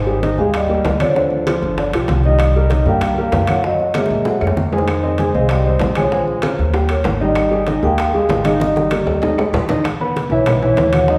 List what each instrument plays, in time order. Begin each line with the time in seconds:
Already playing: upright bass G#1, trombone D#3, vibraphone C5
0.07 grand piano G3 G4 G#4, high conga
0.23 grand piano D#3 D#4 D#5, high bongo, high conga, high timbale
0.38 upright bass D#2, grand piano G#3 G4 G#4, trombone G#3, vibraphone F5, high conga
0.53 trombone G3, vibraphone D#5, high bongo, high conga, high timbale, claves
0.69 grand piano A#3 G4 A#4, high conga
0.84 upright bass D2, high bongo, low bongo, high conga, high timbale, low timbale
1.00 grand piano D3 D4 D5, trombone F3, vibraphone C#5, high conga, high timbale, claves
1.15 grand piano D3 D4 D5, trombone F3, vibraphone C5, high bongo, high conga
1.31 high conga
1.47 grand piano F3 F4 A4, high bongo, high conga, high timbale, claves
1.62 upright bass G1, high bongo, high conga
1.78 grand piano D3 D4 D5, high bongo, high conga, high timbale
1.93 upright bass B1, grand piano F3 F4 G4, high bongo, high conga, high timbale, claves
2.08 upright bass C2, high bongo, low bongo, high conga, high timbale
2.24 grand piano D#3 D#4 D#5, trombone G3, vibraphone D#5, high bongo, high conga
2.39 high bongo, high conga, high timbale, claves
2.56 grand piano G3 G4 A#4, high conga
2.70 grand piano D#3 D#4 D#5, high bongo, high conga, high timbale
2.86 upright bass G2, grand piano G3 G4 A#4, trombone A#3, vibraphone G5, high conga
3.01 high bongo, high conga, high timbale, claves
3.17 grand piano G3 G4 A#4, trombone A#3, vibraphone F5, high conga
3.32 upright bass F#2, high bongo, low bongo, high conga, high timbale, low timbale
3.47 grand piano F#3 F#4 F#5, high conga, high timbale, claves
3.63 grand piano F#3 F#4 F#5, trombone F#3, vibraphone D#5, high bongo, high conga
3.80 high conga
3.94 trombone G#3, grand piano A#3 A#4 C#5, high bongo, high conga, high timbale, claves
4.06 high bongo
4.10 upright bass A#2, high conga
4.25 grand piano F#3 F#4 F#5, high bongo, high conga, high timbale
4.41 upright bass F#2, grand piano A#3 A#4 C#5, high conga, high timbale, claves
4.47 low bongo
4.57 upright bass F2, low bongo, high conga
4.72 trombone D#3, grand piano G#3 G#4 G#5, vibraphone C5, high conga, low timbale
4.78 low bongo
4.88 high bongo, high conga, high timbale, claves
5.03 grand piano C4 C5 D#5, high conga
5.18 grand piano G#3 G#4 G#5, high bongo, high conga, high timbale
5.34 upright bass C2, trombone G#3, grand piano C4 C5 D#5, vibraphone F5, high conga
5.49 trombone G3, vibraphone D#5, high bongo, high conga, high timbale, claves
5.65 grand piano C4 C5 D#5, high conga
5.79 upright bass A#1, high bongo, low bongo, high conga, high timbale, low timbale
5.95 trombone F3, grand piano G#3 G#4 G#5, vibraphone C#5, high conga, high timbale, claves
6.12 trombone F3, grand piano G#3 G#4 G#5, vibraphone C5, high bongo, high conga
6.28 high conga
6.42 grand piano C#4 A#4 F5, high bongo, high conga, high timbale, claves
6.59 upright bass D#2, high bongo, high conga
6.73 grand piano G3 G4 G5, high bongo, high conga, high timbale
6.89 grand piano A#3 A#4 C#5, high bongo, high conga, high timbale, claves
7.04 upright bass G#1, high bongo, low bongo, high conga, high timbale, low timbale
7.20 grand piano D#3 D#4 D#5, trombone G3, vibraphone D#5, high bongo, high conga
7.35 high bongo, high conga, high timbale, claves
7.51 grand piano G3 G4 G#4, high conga
7.67 grand piano D#3 D#4 D#5, high bongo, high conga, high timbale
7.82 upright bass D#2, grand piano G#3 G4 G#4, trombone A#3, vibraphone G5, high conga
7.98 high bongo, high conga, high timbale, claves
8.14 grand piano G#3 G4 G#4, trombone G#3, vibraphone F5, high conga
8.29 upright bass G#1, high bongo, low bongo, high conga, high timbale, low timbale
8.44 grand piano D#3 D#4 D#5, trombone G#3, vibraphone F5, high conga, high timbale, claves
8.60 grand piano D#3 D#4 D#5, trombone G3, vibraphone D#5, high bongo, high conga
8.76 high bongo, high conga
8.90 grand piano A#3 G4 A#4, high conga, high timbale, claves
9.06 upright bass D#2, high timbale
9.22 grand piano D#3 D#4 D#5, low bongo, low conga, high timbale
9.38 grand piano G#3 G4 G#4, low bongo, high timbale, claves
9.53 upright bass E2, low bongo, low conga, low timbale
9.69 grand piano D#3 D#4 D#5, low bongo, low conga, low timbale
9.84 high bongo, high conga, high timbale, claves
10.01 grand piano B3 B4 B5, high conga
10.16 high bongo, high conga, high timbale
10.30 upright bass B1, grand piano E3 E4 E5, trombone E3, vibraphone C#5, high conga
10.46 trombone D#3, grand piano B3 B4 B5, vibraphone B4, high bongo, high conga, low conga, high timbale, claves
10.62 grand piano E3 E4 E5, trombone E3, vibraphone C#5, high conga, low conga
10.76 upright bass D#2, high bongo, low bongo, high conga, high timbale, low timbale
10.93 grand piano F#3 F#4 F#5, high conga, high timbale, claves
11.08 grand piano D#3 D#4 D#5, trombone F#3, vibraphone D#5, high bongo, high conga